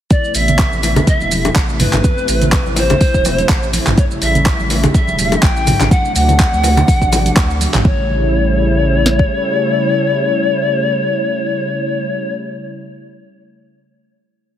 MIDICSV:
0, 0, Header, 1, 5, 480
1, 0, Start_track
1, 0, Tempo, 483871
1, 105, Time_signature, 4, 2, 24, 8
1, 14461, End_track
2, 0, Start_track
2, 0, Title_t, "Pan flute"
2, 0, Program_c, 0, 75
2, 104, Note_on_c, 0, 74, 107
2, 328, Note_off_c, 0, 74, 0
2, 348, Note_on_c, 0, 76, 118
2, 1027, Note_off_c, 0, 76, 0
2, 1067, Note_on_c, 0, 76, 99
2, 1513, Note_off_c, 0, 76, 0
2, 1787, Note_on_c, 0, 71, 103
2, 2706, Note_off_c, 0, 71, 0
2, 2747, Note_on_c, 0, 72, 122
2, 3667, Note_off_c, 0, 72, 0
2, 3946, Note_on_c, 0, 73, 93
2, 4005, Note_off_c, 0, 73, 0
2, 4189, Note_on_c, 0, 76, 120
2, 4633, Note_off_c, 0, 76, 0
2, 4906, Note_on_c, 0, 76, 102
2, 5383, Note_on_c, 0, 79, 110
2, 5398, Note_off_c, 0, 76, 0
2, 5857, Note_off_c, 0, 79, 0
2, 5863, Note_on_c, 0, 78, 108
2, 6087, Note_off_c, 0, 78, 0
2, 6102, Note_on_c, 0, 78, 105
2, 7504, Note_off_c, 0, 78, 0
2, 7788, Note_on_c, 0, 73, 98
2, 12229, Note_off_c, 0, 73, 0
2, 14461, End_track
3, 0, Start_track
3, 0, Title_t, "Analog synth pad"
3, 0, Program_c, 1, 89
3, 103, Note_on_c, 1, 59, 70
3, 105, Note_on_c, 1, 48, 80
3, 105, Note_on_c, 1, 57, 76
3, 105, Note_on_c, 1, 64, 88
3, 2005, Note_off_c, 1, 59, 0
3, 2025, Note_on_c, 1, 60, 71
3, 3907, Note_off_c, 1, 48, 0
3, 3907, Note_off_c, 1, 57, 0
3, 3926, Note_off_c, 1, 60, 0
3, 3946, Note_on_c, 1, 49, 79
3, 3946, Note_on_c, 1, 55, 75
3, 3947, Note_on_c, 1, 57, 74
3, 5825, Note_off_c, 1, 64, 0
3, 5846, Note_off_c, 1, 55, 0
3, 5847, Note_off_c, 1, 49, 0
3, 5862, Note_on_c, 1, 62, 84
3, 5863, Note_on_c, 1, 48, 81
3, 5864, Note_on_c, 1, 54, 73
3, 7748, Note_off_c, 1, 57, 0
3, 7764, Note_off_c, 1, 62, 0
3, 7765, Note_off_c, 1, 48, 0
3, 7765, Note_off_c, 1, 54, 0
3, 7786, Note_on_c, 1, 49, 81
3, 7786, Note_on_c, 1, 57, 77
3, 7786, Note_on_c, 1, 64, 89
3, 7788, Note_on_c, 1, 55, 75
3, 12227, Note_off_c, 1, 49, 0
3, 12227, Note_off_c, 1, 57, 0
3, 12228, Note_off_c, 1, 64, 0
3, 12229, Note_off_c, 1, 55, 0
3, 14461, End_track
4, 0, Start_track
4, 0, Title_t, "Analog synth bass"
4, 0, Program_c, 2, 38
4, 344, Note_on_c, 2, 33, 100
4, 636, Note_off_c, 2, 33, 0
4, 718, Note_on_c, 2, 33, 93
4, 999, Note_off_c, 2, 33, 0
4, 1197, Note_on_c, 2, 28, 98
4, 1479, Note_off_c, 2, 28, 0
4, 1545, Note_on_c, 2, 33, 105
4, 1836, Note_off_c, 2, 33, 0
4, 1918, Note_on_c, 2, 33, 103
4, 1984, Note_off_c, 2, 33, 0
4, 2264, Note_on_c, 2, 33, 99
4, 2556, Note_off_c, 2, 33, 0
4, 2638, Note_on_c, 2, 33, 96
4, 2920, Note_off_c, 2, 33, 0
4, 3119, Note_on_c, 2, 28, 97
4, 3400, Note_off_c, 2, 28, 0
4, 3465, Note_on_c, 2, 33, 102
4, 3756, Note_off_c, 2, 33, 0
4, 3837, Note_on_c, 2, 33, 104
4, 3904, Note_off_c, 2, 33, 0
4, 4184, Note_on_c, 2, 33, 102
4, 4476, Note_off_c, 2, 33, 0
4, 4557, Note_on_c, 2, 33, 95
4, 4839, Note_off_c, 2, 33, 0
4, 5038, Note_on_c, 2, 28, 97
4, 5320, Note_off_c, 2, 28, 0
4, 5385, Note_on_c, 2, 33, 107
4, 5677, Note_off_c, 2, 33, 0
4, 5758, Note_on_c, 2, 33, 110
4, 5824, Note_off_c, 2, 33, 0
4, 6105, Note_on_c, 2, 38, 106
4, 6396, Note_off_c, 2, 38, 0
4, 6480, Note_on_c, 2, 38, 99
4, 6760, Note_off_c, 2, 38, 0
4, 6960, Note_on_c, 2, 33, 104
4, 7241, Note_off_c, 2, 33, 0
4, 7306, Note_on_c, 2, 38, 97
4, 7597, Note_off_c, 2, 38, 0
4, 7680, Note_on_c, 2, 33, 100
4, 7745, Note_off_c, 2, 33, 0
4, 7787, Note_on_c, 2, 33, 95
4, 9187, Note_off_c, 2, 33, 0
4, 14461, End_track
5, 0, Start_track
5, 0, Title_t, "Drums"
5, 103, Note_on_c, 9, 63, 70
5, 104, Note_on_c, 9, 42, 45
5, 106, Note_on_c, 9, 36, 122
5, 108, Note_on_c, 9, 82, 55
5, 202, Note_off_c, 9, 63, 0
5, 204, Note_off_c, 9, 42, 0
5, 205, Note_off_c, 9, 36, 0
5, 207, Note_off_c, 9, 82, 0
5, 241, Note_on_c, 9, 82, 26
5, 340, Note_off_c, 9, 82, 0
5, 343, Note_on_c, 9, 46, 93
5, 347, Note_on_c, 9, 82, 96
5, 442, Note_off_c, 9, 46, 0
5, 446, Note_off_c, 9, 82, 0
5, 477, Note_on_c, 9, 42, 59
5, 481, Note_on_c, 9, 82, 43
5, 487, Note_on_c, 9, 64, 85
5, 577, Note_off_c, 9, 42, 0
5, 580, Note_off_c, 9, 82, 0
5, 583, Note_on_c, 9, 39, 113
5, 583, Note_on_c, 9, 42, 44
5, 585, Note_on_c, 9, 36, 120
5, 586, Note_off_c, 9, 64, 0
5, 587, Note_on_c, 9, 82, 49
5, 683, Note_off_c, 9, 39, 0
5, 683, Note_off_c, 9, 42, 0
5, 684, Note_off_c, 9, 36, 0
5, 686, Note_off_c, 9, 82, 0
5, 720, Note_on_c, 9, 63, 63
5, 722, Note_on_c, 9, 82, 26
5, 819, Note_off_c, 9, 63, 0
5, 821, Note_off_c, 9, 82, 0
5, 825, Note_on_c, 9, 46, 96
5, 826, Note_on_c, 9, 61, 79
5, 829, Note_on_c, 9, 82, 93
5, 925, Note_off_c, 9, 46, 0
5, 926, Note_off_c, 9, 61, 0
5, 928, Note_off_c, 9, 82, 0
5, 954, Note_on_c, 9, 64, 113
5, 956, Note_on_c, 9, 60, 113
5, 958, Note_on_c, 9, 42, 55
5, 961, Note_on_c, 9, 82, 39
5, 1054, Note_off_c, 9, 64, 0
5, 1056, Note_off_c, 9, 60, 0
5, 1057, Note_off_c, 9, 42, 0
5, 1060, Note_off_c, 9, 82, 0
5, 1064, Note_on_c, 9, 42, 47
5, 1065, Note_on_c, 9, 36, 119
5, 1067, Note_on_c, 9, 82, 52
5, 1163, Note_off_c, 9, 42, 0
5, 1164, Note_off_c, 9, 36, 0
5, 1166, Note_off_c, 9, 82, 0
5, 1194, Note_on_c, 9, 63, 70
5, 1200, Note_on_c, 9, 82, 28
5, 1293, Note_off_c, 9, 63, 0
5, 1299, Note_off_c, 9, 82, 0
5, 1304, Note_on_c, 9, 46, 97
5, 1307, Note_on_c, 9, 82, 96
5, 1313, Note_on_c, 9, 63, 62
5, 1403, Note_off_c, 9, 46, 0
5, 1406, Note_off_c, 9, 82, 0
5, 1412, Note_off_c, 9, 63, 0
5, 1437, Note_on_c, 9, 42, 59
5, 1439, Note_on_c, 9, 60, 110
5, 1441, Note_on_c, 9, 63, 68
5, 1441, Note_on_c, 9, 82, 39
5, 1537, Note_off_c, 9, 42, 0
5, 1538, Note_off_c, 9, 60, 0
5, 1540, Note_off_c, 9, 63, 0
5, 1540, Note_off_c, 9, 82, 0
5, 1544, Note_on_c, 9, 39, 108
5, 1544, Note_on_c, 9, 42, 44
5, 1545, Note_on_c, 9, 36, 114
5, 1547, Note_on_c, 9, 82, 52
5, 1643, Note_off_c, 9, 39, 0
5, 1643, Note_off_c, 9, 42, 0
5, 1644, Note_off_c, 9, 36, 0
5, 1647, Note_off_c, 9, 82, 0
5, 1680, Note_on_c, 9, 82, 27
5, 1779, Note_off_c, 9, 82, 0
5, 1783, Note_on_c, 9, 45, 84
5, 1783, Note_on_c, 9, 46, 98
5, 1786, Note_on_c, 9, 82, 93
5, 1787, Note_on_c, 9, 63, 54
5, 1788, Note_on_c, 9, 64, 87
5, 1882, Note_off_c, 9, 45, 0
5, 1882, Note_off_c, 9, 46, 0
5, 1885, Note_off_c, 9, 82, 0
5, 1886, Note_off_c, 9, 63, 0
5, 1888, Note_off_c, 9, 64, 0
5, 1915, Note_on_c, 9, 61, 84
5, 1916, Note_on_c, 9, 39, 67
5, 1916, Note_on_c, 9, 42, 59
5, 1916, Note_on_c, 9, 45, 90
5, 1920, Note_on_c, 9, 82, 42
5, 1922, Note_on_c, 9, 60, 79
5, 2014, Note_off_c, 9, 61, 0
5, 2015, Note_off_c, 9, 39, 0
5, 2015, Note_off_c, 9, 42, 0
5, 2015, Note_off_c, 9, 45, 0
5, 2019, Note_off_c, 9, 82, 0
5, 2021, Note_off_c, 9, 60, 0
5, 2021, Note_on_c, 9, 63, 67
5, 2024, Note_on_c, 9, 42, 44
5, 2025, Note_on_c, 9, 36, 123
5, 2027, Note_on_c, 9, 82, 56
5, 2120, Note_off_c, 9, 63, 0
5, 2123, Note_off_c, 9, 42, 0
5, 2124, Note_off_c, 9, 36, 0
5, 2126, Note_off_c, 9, 82, 0
5, 2160, Note_on_c, 9, 82, 27
5, 2259, Note_off_c, 9, 82, 0
5, 2263, Note_on_c, 9, 46, 96
5, 2266, Note_on_c, 9, 82, 100
5, 2362, Note_off_c, 9, 46, 0
5, 2365, Note_off_c, 9, 82, 0
5, 2396, Note_on_c, 9, 42, 58
5, 2399, Note_on_c, 9, 82, 44
5, 2402, Note_on_c, 9, 64, 85
5, 2495, Note_off_c, 9, 42, 0
5, 2498, Note_off_c, 9, 82, 0
5, 2501, Note_off_c, 9, 64, 0
5, 2503, Note_on_c, 9, 39, 110
5, 2503, Note_on_c, 9, 42, 42
5, 2505, Note_on_c, 9, 36, 126
5, 2506, Note_on_c, 9, 82, 56
5, 2602, Note_off_c, 9, 39, 0
5, 2602, Note_off_c, 9, 42, 0
5, 2605, Note_off_c, 9, 36, 0
5, 2605, Note_off_c, 9, 82, 0
5, 2639, Note_on_c, 9, 63, 66
5, 2639, Note_on_c, 9, 82, 27
5, 2738, Note_off_c, 9, 82, 0
5, 2739, Note_off_c, 9, 63, 0
5, 2740, Note_on_c, 9, 61, 98
5, 2743, Note_on_c, 9, 46, 93
5, 2746, Note_on_c, 9, 82, 99
5, 2839, Note_off_c, 9, 61, 0
5, 2842, Note_off_c, 9, 46, 0
5, 2845, Note_off_c, 9, 82, 0
5, 2876, Note_on_c, 9, 42, 54
5, 2879, Note_on_c, 9, 60, 97
5, 2879, Note_on_c, 9, 82, 39
5, 2886, Note_on_c, 9, 64, 109
5, 2975, Note_off_c, 9, 42, 0
5, 2978, Note_off_c, 9, 60, 0
5, 2979, Note_off_c, 9, 82, 0
5, 2983, Note_on_c, 9, 46, 56
5, 2985, Note_off_c, 9, 64, 0
5, 2985, Note_on_c, 9, 36, 127
5, 2986, Note_on_c, 9, 82, 57
5, 3082, Note_off_c, 9, 46, 0
5, 3085, Note_off_c, 9, 36, 0
5, 3085, Note_off_c, 9, 82, 0
5, 3118, Note_on_c, 9, 36, 67
5, 3119, Note_on_c, 9, 82, 30
5, 3217, Note_off_c, 9, 36, 0
5, 3218, Note_off_c, 9, 82, 0
5, 3221, Note_on_c, 9, 63, 59
5, 3224, Note_on_c, 9, 46, 93
5, 3227, Note_on_c, 9, 82, 99
5, 3231, Note_on_c, 9, 61, 87
5, 3320, Note_off_c, 9, 63, 0
5, 3323, Note_off_c, 9, 46, 0
5, 3326, Note_off_c, 9, 82, 0
5, 3330, Note_off_c, 9, 61, 0
5, 3358, Note_on_c, 9, 42, 55
5, 3361, Note_on_c, 9, 82, 41
5, 3362, Note_on_c, 9, 63, 68
5, 3457, Note_off_c, 9, 42, 0
5, 3460, Note_off_c, 9, 82, 0
5, 3461, Note_off_c, 9, 63, 0
5, 3464, Note_on_c, 9, 39, 112
5, 3464, Note_on_c, 9, 42, 44
5, 3465, Note_on_c, 9, 36, 127
5, 3468, Note_on_c, 9, 82, 58
5, 3563, Note_off_c, 9, 39, 0
5, 3563, Note_off_c, 9, 42, 0
5, 3564, Note_off_c, 9, 36, 0
5, 3567, Note_off_c, 9, 82, 0
5, 3601, Note_on_c, 9, 82, 28
5, 3700, Note_off_c, 9, 82, 0
5, 3702, Note_on_c, 9, 63, 65
5, 3704, Note_on_c, 9, 46, 92
5, 3708, Note_on_c, 9, 82, 100
5, 3801, Note_off_c, 9, 63, 0
5, 3803, Note_off_c, 9, 46, 0
5, 3807, Note_off_c, 9, 82, 0
5, 3837, Note_on_c, 9, 39, 68
5, 3837, Note_on_c, 9, 42, 57
5, 3837, Note_on_c, 9, 45, 95
5, 3840, Note_on_c, 9, 82, 43
5, 3936, Note_off_c, 9, 39, 0
5, 3936, Note_off_c, 9, 42, 0
5, 3936, Note_off_c, 9, 45, 0
5, 3939, Note_off_c, 9, 82, 0
5, 3944, Note_on_c, 9, 42, 44
5, 3945, Note_on_c, 9, 36, 127
5, 3947, Note_on_c, 9, 63, 68
5, 3947, Note_on_c, 9, 82, 57
5, 4043, Note_off_c, 9, 42, 0
5, 4044, Note_off_c, 9, 36, 0
5, 4046, Note_off_c, 9, 63, 0
5, 4046, Note_off_c, 9, 82, 0
5, 4079, Note_on_c, 9, 82, 28
5, 4179, Note_off_c, 9, 82, 0
5, 4183, Note_on_c, 9, 46, 90
5, 4187, Note_on_c, 9, 82, 102
5, 4283, Note_off_c, 9, 46, 0
5, 4286, Note_off_c, 9, 82, 0
5, 4316, Note_on_c, 9, 64, 84
5, 4317, Note_on_c, 9, 42, 57
5, 4321, Note_on_c, 9, 82, 44
5, 4415, Note_off_c, 9, 64, 0
5, 4417, Note_off_c, 9, 42, 0
5, 4420, Note_off_c, 9, 82, 0
5, 4424, Note_on_c, 9, 39, 112
5, 4424, Note_on_c, 9, 42, 43
5, 4425, Note_on_c, 9, 36, 127
5, 4428, Note_on_c, 9, 82, 55
5, 4523, Note_off_c, 9, 39, 0
5, 4523, Note_off_c, 9, 42, 0
5, 4524, Note_off_c, 9, 36, 0
5, 4527, Note_off_c, 9, 82, 0
5, 4558, Note_on_c, 9, 63, 67
5, 4560, Note_on_c, 9, 82, 27
5, 4657, Note_off_c, 9, 63, 0
5, 4659, Note_off_c, 9, 82, 0
5, 4664, Note_on_c, 9, 46, 90
5, 4667, Note_on_c, 9, 82, 98
5, 4671, Note_on_c, 9, 61, 88
5, 4763, Note_off_c, 9, 46, 0
5, 4766, Note_off_c, 9, 82, 0
5, 4770, Note_off_c, 9, 61, 0
5, 4797, Note_on_c, 9, 60, 111
5, 4798, Note_on_c, 9, 42, 53
5, 4801, Note_on_c, 9, 82, 44
5, 4802, Note_on_c, 9, 64, 107
5, 4896, Note_off_c, 9, 60, 0
5, 4897, Note_off_c, 9, 42, 0
5, 4900, Note_off_c, 9, 82, 0
5, 4902, Note_off_c, 9, 64, 0
5, 4905, Note_on_c, 9, 36, 127
5, 4905, Note_on_c, 9, 42, 45
5, 4909, Note_on_c, 9, 82, 60
5, 5004, Note_off_c, 9, 36, 0
5, 5005, Note_off_c, 9, 42, 0
5, 5008, Note_off_c, 9, 82, 0
5, 5034, Note_on_c, 9, 63, 74
5, 5043, Note_on_c, 9, 82, 28
5, 5134, Note_off_c, 9, 63, 0
5, 5142, Note_off_c, 9, 82, 0
5, 5145, Note_on_c, 9, 46, 90
5, 5148, Note_on_c, 9, 82, 100
5, 5151, Note_on_c, 9, 63, 66
5, 5244, Note_off_c, 9, 46, 0
5, 5247, Note_off_c, 9, 82, 0
5, 5251, Note_off_c, 9, 63, 0
5, 5276, Note_on_c, 9, 63, 61
5, 5277, Note_on_c, 9, 60, 107
5, 5278, Note_on_c, 9, 42, 52
5, 5281, Note_on_c, 9, 82, 43
5, 5375, Note_off_c, 9, 63, 0
5, 5376, Note_off_c, 9, 60, 0
5, 5377, Note_off_c, 9, 42, 0
5, 5381, Note_off_c, 9, 82, 0
5, 5385, Note_on_c, 9, 36, 127
5, 5385, Note_on_c, 9, 39, 108
5, 5385, Note_on_c, 9, 42, 42
5, 5388, Note_on_c, 9, 82, 58
5, 5484, Note_off_c, 9, 36, 0
5, 5484, Note_off_c, 9, 39, 0
5, 5484, Note_off_c, 9, 42, 0
5, 5487, Note_off_c, 9, 82, 0
5, 5521, Note_on_c, 9, 82, 28
5, 5621, Note_off_c, 9, 82, 0
5, 5625, Note_on_c, 9, 45, 88
5, 5625, Note_on_c, 9, 46, 89
5, 5625, Note_on_c, 9, 63, 58
5, 5628, Note_on_c, 9, 82, 102
5, 5630, Note_on_c, 9, 64, 82
5, 5724, Note_off_c, 9, 45, 0
5, 5724, Note_off_c, 9, 46, 0
5, 5724, Note_off_c, 9, 63, 0
5, 5728, Note_off_c, 9, 82, 0
5, 5729, Note_off_c, 9, 64, 0
5, 5753, Note_on_c, 9, 61, 80
5, 5756, Note_on_c, 9, 60, 88
5, 5759, Note_on_c, 9, 39, 65
5, 5759, Note_on_c, 9, 42, 57
5, 5759, Note_on_c, 9, 45, 90
5, 5763, Note_on_c, 9, 82, 45
5, 5853, Note_off_c, 9, 61, 0
5, 5856, Note_off_c, 9, 60, 0
5, 5859, Note_off_c, 9, 39, 0
5, 5859, Note_off_c, 9, 42, 0
5, 5859, Note_off_c, 9, 45, 0
5, 5862, Note_off_c, 9, 82, 0
5, 5865, Note_on_c, 9, 36, 127
5, 5866, Note_on_c, 9, 42, 45
5, 5869, Note_on_c, 9, 82, 55
5, 5870, Note_on_c, 9, 63, 65
5, 5965, Note_off_c, 9, 36, 0
5, 5965, Note_off_c, 9, 42, 0
5, 5969, Note_off_c, 9, 63, 0
5, 5969, Note_off_c, 9, 82, 0
5, 6004, Note_on_c, 9, 82, 27
5, 6103, Note_off_c, 9, 82, 0
5, 6107, Note_on_c, 9, 46, 90
5, 6110, Note_on_c, 9, 82, 98
5, 6206, Note_off_c, 9, 46, 0
5, 6210, Note_off_c, 9, 82, 0
5, 6234, Note_on_c, 9, 64, 80
5, 6236, Note_on_c, 9, 61, 61
5, 6240, Note_on_c, 9, 42, 59
5, 6243, Note_on_c, 9, 82, 43
5, 6333, Note_off_c, 9, 64, 0
5, 6335, Note_off_c, 9, 61, 0
5, 6339, Note_off_c, 9, 42, 0
5, 6343, Note_off_c, 9, 82, 0
5, 6346, Note_on_c, 9, 36, 127
5, 6347, Note_on_c, 9, 39, 104
5, 6347, Note_on_c, 9, 42, 44
5, 6350, Note_on_c, 9, 82, 54
5, 6445, Note_off_c, 9, 36, 0
5, 6446, Note_off_c, 9, 39, 0
5, 6446, Note_off_c, 9, 42, 0
5, 6449, Note_off_c, 9, 82, 0
5, 6481, Note_on_c, 9, 63, 67
5, 6485, Note_on_c, 9, 82, 28
5, 6580, Note_off_c, 9, 63, 0
5, 6582, Note_on_c, 9, 61, 105
5, 6584, Note_off_c, 9, 82, 0
5, 6588, Note_on_c, 9, 46, 86
5, 6591, Note_on_c, 9, 82, 99
5, 6681, Note_off_c, 9, 61, 0
5, 6687, Note_off_c, 9, 46, 0
5, 6690, Note_off_c, 9, 82, 0
5, 6717, Note_on_c, 9, 64, 110
5, 6720, Note_on_c, 9, 60, 101
5, 6721, Note_on_c, 9, 42, 55
5, 6724, Note_on_c, 9, 82, 39
5, 6816, Note_off_c, 9, 64, 0
5, 6819, Note_off_c, 9, 60, 0
5, 6819, Note_on_c, 9, 63, 63
5, 6820, Note_off_c, 9, 42, 0
5, 6823, Note_off_c, 9, 82, 0
5, 6826, Note_on_c, 9, 36, 127
5, 6827, Note_on_c, 9, 46, 50
5, 6831, Note_on_c, 9, 82, 55
5, 6918, Note_off_c, 9, 63, 0
5, 6925, Note_off_c, 9, 36, 0
5, 6927, Note_off_c, 9, 46, 0
5, 6930, Note_off_c, 9, 82, 0
5, 6959, Note_on_c, 9, 36, 66
5, 6964, Note_on_c, 9, 82, 28
5, 7058, Note_off_c, 9, 36, 0
5, 7063, Note_off_c, 9, 82, 0
5, 7068, Note_on_c, 9, 46, 93
5, 7068, Note_on_c, 9, 60, 89
5, 7068, Note_on_c, 9, 63, 64
5, 7071, Note_on_c, 9, 82, 100
5, 7073, Note_on_c, 9, 61, 83
5, 7167, Note_off_c, 9, 46, 0
5, 7167, Note_off_c, 9, 60, 0
5, 7167, Note_off_c, 9, 63, 0
5, 7171, Note_off_c, 9, 82, 0
5, 7172, Note_off_c, 9, 61, 0
5, 7198, Note_on_c, 9, 63, 74
5, 7201, Note_on_c, 9, 42, 57
5, 7204, Note_on_c, 9, 82, 42
5, 7297, Note_off_c, 9, 63, 0
5, 7300, Note_off_c, 9, 42, 0
5, 7304, Note_off_c, 9, 82, 0
5, 7306, Note_on_c, 9, 36, 127
5, 7308, Note_on_c, 9, 39, 111
5, 7308, Note_on_c, 9, 42, 45
5, 7311, Note_on_c, 9, 82, 58
5, 7405, Note_off_c, 9, 36, 0
5, 7407, Note_off_c, 9, 39, 0
5, 7407, Note_off_c, 9, 42, 0
5, 7410, Note_off_c, 9, 82, 0
5, 7444, Note_on_c, 9, 82, 27
5, 7543, Note_off_c, 9, 82, 0
5, 7547, Note_on_c, 9, 63, 59
5, 7549, Note_on_c, 9, 46, 88
5, 7552, Note_on_c, 9, 82, 95
5, 7646, Note_off_c, 9, 63, 0
5, 7648, Note_off_c, 9, 46, 0
5, 7651, Note_off_c, 9, 82, 0
5, 7680, Note_on_c, 9, 39, 63
5, 7680, Note_on_c, 9, 42, 57
5, 7680, Note_on_c, 9, 45, 98
5, 7683, Note_on_c, 9, 82, 43
5, 7779, Note_off_c, 9, 39, 0
5, 7779, Note_off_c, 9, 42, 0
5, 7779, Note_off_c, 9, 45, 0
5, 7782, Note_off_c, 9, 82, 0
5, 7787, Note_on_c, 9, 36, 122
5, 7886, Note_off_c, 9, 36, 0
5, 8986, Note_on_c, 9, 38, 63
5, 9086, Note_off_c, 9, 38, 0
5, 9119, Note_on_c, 9, 36, 80
5, 9219, Note_off_c, 9, 36, 0
5, 14461, End_track
0, 0, End_of_file